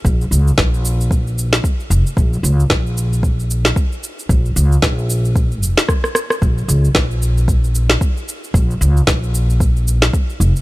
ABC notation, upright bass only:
X:1
M:4/4
L:1/8
Q:"Swing 16ths" 1/4=113
K:Bbm
V:1 name="Upright bass" clef=bass
B,,, D,, B,,,4 z F,,, | B,,, D,, B,,,4 z2 | B,,, D,, B,,,3 F,,, z2 | B,,, D,, B,,,4 z2 |
B,,, D,, B,,,4 z F,,, |]